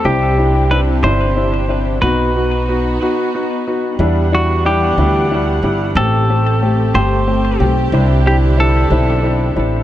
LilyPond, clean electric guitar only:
\new Staff \with { instrumentName = "Clean electric guitar" } { \time 6/8 \key e \minor \tempo 4. = 61 g'4 b'8 c''4. | b'2 r4 | r8 fis'8 g'2 | a'4. c''4 r8 |
r8 g'8 a'2 | }